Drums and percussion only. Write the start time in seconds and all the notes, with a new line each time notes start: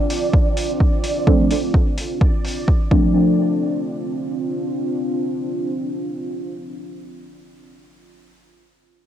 0.10 open hi-hat
0.33 kick
0.57 open hi-hat
0.80 kick
1.04 open hi-hat
1.27 kick
1.51 open hi-hat
1.74 kick
1.97 open hi-hat
2.21 kick
2.44 open hi-hat
2.68 kick
2.91 kick